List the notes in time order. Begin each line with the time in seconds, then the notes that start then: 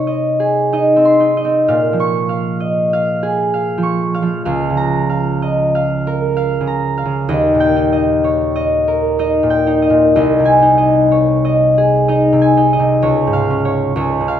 Already playing: C3 C4 D#4 G#4 C#5 C6
0.07 D#5
0.40 G#4
0.73 D#4 D#5
0.96 C4
1.05 C6
1.20 D#4
1.37 D#5
1.45 C4
1.68 A#2 F5
1.93 F3
2.00 C#6
2.29 F5
2.60 D#5
2.93 F5
3.23 G#4
3.54 F5
3.78 F3
3.83 C#6
4.14 F5
4.22 F3
4.45 C#2 F5
4.70 C#3
4.77 A#5
5.10 F5
5.42 D#5
5.75 F5
6.07 A#4
6.37 F5
6.61 C#3
6.67 A#5
6.98 F5
7.06 C#3
7.29 D#2 D#5
7.55 A#2
7.60 G5
7.76 D#4
7.93 D#5
8.24 C#5
8.56 D#5
8.88 A#4
9.19 D#4 D#5
9.43 A#2
9.50 G5
9.67 D#4
9.82 D#5
9.90 A#2
10.16 C2 D#5
10.39 C3
10.45 G#5
10.62 D#4
10.78 D#5
11.12 C#5
11.45 D#5
11.78 G#4
12.08 D#4 D#5
12.33 C3
12.42 G#5
12.57 D#4
12.73 D#5
12.79 C3
13.02 C#2 C#5
13.27 G#2
13.33 F5
13.50 C#4
13.65 C#5
13.96 C#2 C#5
14.21 C#3
14.28 F5